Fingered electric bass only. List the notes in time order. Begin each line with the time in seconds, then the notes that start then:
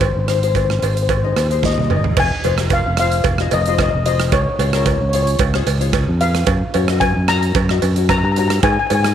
0.01 G#1
0.15 G#1
0.82 G#1
1.36 D#2
1.91 G#1
2.17 F1
2.45 F1
2.86 F1
3.24 F1
3.52 F1
3.93 F1
4.32 C#2
4.59 C#2
5.01 C#2
5.39 C#2
5.66 C#2
6.08 F2
6.47 F#2
6.75 F#2
7.16 F#2
7.55 F#2
7.83 F#2
8.23 G2
8.63 G#2
8.91 G#2